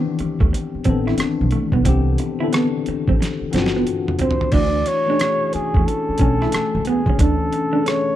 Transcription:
Already playing: D#3 E3 B3 C4 D4 G4
0.19 muted upright bass stroke, muted clean electric guitar stroke, closed hi-hat
0.40 D2 A3, kick
0.53 muted clean electric guitar stroke, closed hi-hat
0.75 muted upright bass stroke
0.84 A1 D#3 B3 C4, kick, closed hi-hat
0.89 E3 D4 A4
1.07 E4, cross-stick
1.18 muted upright bass stroke, muted clean electric guitar stroke, cross-stick, closed hi-hat
1.41 B1
1.51 A3, closed hi-hat
1.72 B1 B3, kick
1.84 C2 E3 B3 C4 D4, kick, closed hi-hat
1.89 G4
2.18 muted clean electric guitar stroke, closed hi-hat
2.39 D3 B3 C4 D4 E4
2.44 E3 A4
2.53 B3, cross-stick, closed hi-hat
2.86 muted upright bass stroke, muted clean electric guitar stroke, closed hi-hat
3.08 A1 C4, kick
3.21 muted clean electric guitar stroke, snare, closed hi-hat
3.41 muted upright bass stroke
3.51 G1 E3 B3 C4 D4, closed hi-hat
3.56 F4, snare
3.62 F#4, snare
3.76 B3
3.87 closed hi-hat
4.08 mid tom
4.19 C4 C5, closed hi-hat, floor tom
4.31 floor tom
4.41 floor tom
4.52 D2 E3 A3 D4 E4 D5, kick, crash
4.56 F#4
4.86 C#5, muted clean electric guitar stroke, closed hi-hat
5.06 E3 A3 C#4 D4
5.10 D4 G#4
5.19 C#4, cross-stick, closed hi-hat
5.53 G#4, muted upright bass stroke, muted clean electric guitar stroke, closed hi-hat
5.74 E2 A3, kick
5.86 A4, muted clean electric guitar stroke, closed hi-hat
6.09 muted upright bass stroke
6.18 B1 E3 A3 C#4 D4, kick, closed hi-hat
6.22 G#5
6.42 E4, cross-stick
6.52 muted upright bass stroke, muted clean electric guitar stroke, cross-stick, closed hi-hat
6.75 C#2
6.85 B3 G#4, closed hi-hat
7.06 C#2 C#4, kick
7.18 D2 E3 A3 C#4 D4 A4, kick, closed hi-hat
7.22 A4
7.53 muted clean electric guitar stroke, closed hi-hat
7.72 E3 A3 C#4 D4
7.76 G#4
7.83 C#4 A4, closed hi-hat
7.88 C#5, cross-stick

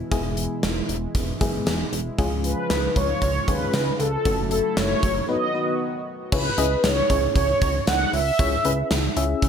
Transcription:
Already playing: B2 E3 G#3 E4
0.11 E1 G#3 B3 E4 G#4, kick, closed hi-hat
0.37 closed hi-hat
0.63 E1, snare, closed hi-hat
0.89 E1, closed hi-hat
1.15 E1, kick, closed hi-hat
1.41 F#1 G#3 B3 E4 G#4, kick, closed hi-hat
1.67 E1, snare, closed hi-hat
1.93 E1, closed hi-hat
2.18 C#2 C#3 F3 G#3 C#4 F4 G#4, kick, closed hi-hat
2.44 B4, closed hi-hat
2.70 C#2, snare, closed hi-hat
2.96 C#2 C#5, kick, closed hi-hat
3.22 C#2 C#5, kick, closed hi-hat
3.48 D#2 G#3 C#4 F4 G#4 B4, kick, closed hi-hat
3.73 C#2, snare, closed hi-hat
4.00 C#2 A4, closed hi-hat
4.25 F#1 F#3 A3 C#4 E4 F#4 A4, kick, closed hi-hat
4.51 A4, closed hi-hat
4.77 F#1 C#5, snare, closed hi-hat
5.03 F#1, kick, closed hi-hat
5.29 D#3 B3 D#4 F#4 B4 D#5
5.55 B3 D#4 F#4 B4
6.32 C#2 C#4 E4 G#4 B4 C#5, kick, crash
6.58 C#2 C#4 E4 G#4 D#5, closed hi-hat
6.84 C#2 C#5, snare, closed hi-hat
7.10 C#2 C#4 E4 G#4 C#5, kick, closed hi-hat
7.36 C#2 C#5, kick, closed hi-hat
7.62 C#2, kick, closed hi-hat
7.87 C#2 F#5, snare, closed hi-hat
8.13 C#2 E5, open hi-hat
8.39 C#2 C#4 E4 G#4 C#5, kick, closed hi-hat
8.65 C#2 C#4 E4 G#4 B4, closed hi-hat
8.91 C#2, snare, closed hi-hat
9.17 C#2 C#4 E4 G#4 E5, closed hi-hat
9.42 C#2, kick, closed hi-hat

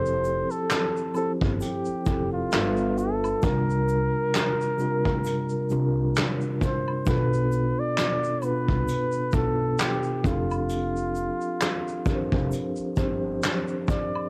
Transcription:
Already playing: F1 F3 C4 E4 G4 A4 C5
0.06 shaker
0.24 shaker
0.51 A4, shaker
0.70 snare, clap, closed hi-hat, shaker
0.97 shaker
1.14 F3 C4 E4 G4 A4 C5, high woodblock, shaker
1.41 G1, kick
1.60 G4, closed hi-hat, shaker
1.85 muted upright bass stroke, shaker
2.06 F1 F3 C4 E4 G4 A4, kick, shaker
2.33 F4
2.52 G1 G3 D4 F4 A4 A#4 E5, snare, clap, closed hi-hat, high woodblock, shaker
2.61 B4
2.77 shaker
2.98 A4, shaker
3.24 high woodblock, shaker
3.42 C2 C3 G3 D4 F4 A#4, kick, closed hi-hat, shaker
3.70 shaker
3.88 shaker
4.34 snare, clap, closed hi-hat, shaker
4.61 shaker
4.78 C3 G3 D4 F4 A#4, shaker
5.05 D2, kick
5.24 closed hi-hat, shaker
5.26 shaker
5.49 muted upright bass stroke, shaker
5.70 C2 C3 G3 D4 F4 A#4, shaker
6.16 snare, clap, closed hi-hat, high woodblock, shaker
6.41 shaker
6.61 C5, kick, shaker
6.88 high woodblock
7.06 B1 B2 B3 D4 F4 A4 B4, kick, closed hi-hat, shaker
7.33 shaker
7.52 shaker
7.80 D5
7.98 snare, clap, closed hi-hat, shaker
8.24 shaker
8.42 B2 B3 D4 F4 B4, high woodblock, shaker
8.68 C2, kick
8.88 closed hi-hat, shaker
9.12 muted upright bass stroke, shaker
9.32 B1 B2 B3 D4 F4 A4, kick, shaker
9.36 A4
9.78 clap, closed hi-hat, high woodblock, shaker
9.80 G4, snare, shaker
10.03 shaker
10.23 F1 F3 C4 D4 F4 G4 A4, kick, shaker
10.51 high woodblock, shaker
10.69 closed hi-hat, shaker
10.96 shaker
11.15 shaker
11.41 shaker
11.61 snare, clap, closed hi-hat, shaker
11.88 shaker
12.05 F3 C4 D4 G4 A#4, kick, shaker
12.15 C5
12.32 F1, kick
12.51 closed hi-hat, shaker
12.76 muted upright bass stroke, shaker
12.96 G1 F3 C4 D4 G4 C5, kick, shaker
13.42 snare, clap, closed hi-hat, high woodblock, shaker
13.68 shaker
13.88 kick, shaker
13.90 D5, shaker
14.15 high woodblock

